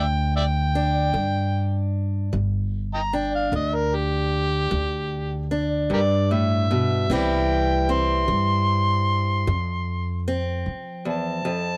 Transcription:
0.00 1.10 D2 loud
0.00 0.67 G2 medium
0.00 0.74 D4 medium
0.00 0.35 G5 medium
0.37 0.45 D5 medium
0.37 0.43 E5 medium
0.37 1.90 G5 loud
0.75 2.29 D4 medium
1.14 2.29 G2 medium
1.14 1.85 D3 medium
2.33 3.48 G1 medium
2.33 3.04 G2 medium
2.94 3.02 D#5 medium
2.94 3.00 G5 medium
2.94 3.17 A#5 medium
3.13 5.50 D4 medium
3.13 3.32 G5 medium
3.35 3.52 F5 medium
3.52 4.67 D2 loud
3.52 4.24 D3 medium
3.52 3.76 D#5 medium
3.75 3.97 A#4 medium
3.95 5.48 G4 loud
4.71 5.87 D2 medium
4.71 5.43 G2 medium
5.51 7.05 D4 medium
5.90 6.30 G2 medium
5.90 7.05 G2 medium
5.90 5.99 G4 medium
5.90 5.99 A#4 medium
5.90 6.33 D5 medium
6.31 6.70 A2 medium
6.31 7.14 E5 medium
6.71 7.09 B2 medium
7.10 8.25 C2 medium
7.10 7.81 C3 medium
7.10 8.27 E3 medium
7.10 9.49 G3 medium
7.10 7.88 C4 medium
7.10 9.49 E4 medium
7.10 7.93 G5 loud
7.89 9.43 C4 medium
7.89 10.24 C6 medium
8.28 9.43 G2 medium
8.28 9.00 E3 medium
9.47 10.19 F2 medium
9.47 10.63 F2 loud
10.28 11.77 C4 medium
10.66 11.77 F3 medium
11.05 11.45 E2 medium
11.05 11.77 A5 loud
11.45 11.77 F2 medium

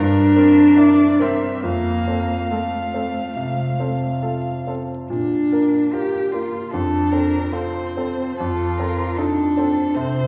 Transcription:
0.00 1.61 G2 medium
0.00 1.23 D4 loud
0.00 0.79 A#4 medium
0.36 0.74 C4 soft
0.36 0.74 A#4 medium
0.77 1.16 E4 soft
0.77 1.17 A#4 soft
0.77 1.22 D5 medium
1.20 1.60 C4 soft
1.20 1.65 C4 medium
1.20 1.60 A#4 soft
1.20 1.66 E5 medium
1.63 3.32 F2 medium
1.63 2.52 A#3 medium
1.63 4.67 F5 medium
2.07 2.47 C4 soft
2.07 2.47 A4 soft
2.51 4.23 A3 medium
2.51 2.90 F4 soft
2.51 2.90 A4 soft
2.94 3.33 C4 soft
2.94 3.33 A4 soft
3.36 4.06 C3 soft
3.79 4.19 C4 soft
3.79 4.19 A4 soft
4.22 4.62 F4 soft
4.22 4.63 A4 soft
4.67 5.06 C4 soft
4.67 5.06 A4 soft
5.10 6.68 A#2 soft
5.10 5.95 D4 medium
5.52 5.89 A#3 soft
5.52 5.89 A#4 soft
5.93 6.29 F4 soft
5.93 6.34 G4 medium
5.93 6.29 A#4 soft
6.32 6.68 A#3 soft
6.32 6.74 F4 medium
6.32 6.68 A#4 soft
6.72 8.36 F2 medium
6.72 7.54 D4 medium
6.72 7.13 A4 medium
7.12 7.49 C4 soft
7.12 7.49 A4 soft
7.12 7.54 A#4 medium
7.52 8.38 C4 medium
7.52 7.92 F4 soft
7.52 7.92 A4 soft
7.52 8.37 C5 medium
7.97 8.35 C4 soft
7.97 8.36 A4 soft
8.37 9.92 F2 medium
8.37 9.18 F4 medium
8.37 8.78 A4 medium
8.77 9.14 C4 soft
8.77 9.14 A4 soft
8.77 9.18 A#4 soft
9.17 9.96 D4 medium
9.17 9.53 D#4 soft
9.17 9.96 A4 medium
9.17 9.53 A4 soft
9.57 9.92 C4 soft
9.57 9.92 A4 soft
9.95 10.27 C3 soft
9.95 10.27 C4 medium
9.95 10.27 C5 medium

